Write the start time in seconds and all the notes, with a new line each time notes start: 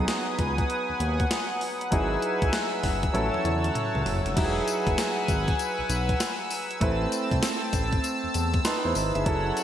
Already playing: F#3 B3 D#4 G#4 B4 F#5 G#5 D#6
0.08 snare, closed hi-hat
0.39 C#2, kick, closed hi-hat
0.58 kick, closed hi-hat
0.70 closed hi-hat
0.89 D#2
1.00 D#2, closed hi-hat
1.20 kick, closed hi-hat
1.31 snare, closed hi-hat
1.61 open hi-hat
1.81 closed hi-hat
1.91 G#1 F#3 D#4 E4 G#4 B4 G#5 E6, kick, closed hi-hat
2.22 closed hi-hat
2.42 B1, kick, closed hi-hat
2.53 snare, closed hi-hat
2.83 F#1, kick, snare, open hi-hat
3.03 kick, closed hi-hat
3.13 A1 F#3 C#4 E4 A4 C#5 A5, closed hi-hat, high tom
3.34 E2, high tom
3.44 E2, closed hi-hat, mid tom
3.64 closed hi-hat, mid tom
3.75 closed hi-hat, mid tom
3.95 C#2, mid tom
4.06 F#1, floor tom, open hi-hat
4.26 F1, closed hi-hat, floor tom
4.36 E1 F#3 D#4 E4 G4 B4 F#5 G#5 E6, kick, closed hi-hat, crash
4.45 G#4
4.68 closed hi-hat, tambourine
4.87 F#1, kick, closed hi-hat
4.98 snare, closed hi-hat, tambourine
5.28 G#1, kick, closed hi-hat, tambourine
5.48 kick, closed hi-hat
5.59 closed hi-hat, tambourine
5.79 B1
5.89 B1, closed hi-hat, tambourine
6.09 kick, closed hi-hat
6.20 snare, closed hi-hat, tambourine
6.50 open hi-hat, tambourine
6.71 closed hi-hat
6.80 A1 A3 C4 E4 B4 A5, kick, closed hi-hat
7.12 closed hi-hat, tambourine
7.31 C2, kick, closed hi-hat
7.42 snare, closed hi-hat, tambourine
7.73 A1, kick, closed hi-hat, tambourine
7.93 kick, closed hi-hat
8.04 closed hi-hat, tambourine
8.24 E2
8.34 E2, closed hi-hat, tambourine
8.54 kick, closed hi-hat
8.65 D#4 B4 C6, snare, closed hi-hat, tambourine
8.85 E2 E4 C5
8.95 G#1 D#4 B4, open hi-hat, tambourine
9.15 G1 G#4 E5, closed hi-hat
9.25 F#1 F#3 C#4 E4 A4 C#5 F#5, kick, closed hi-hat
9.57 closed hi-hat, tambourine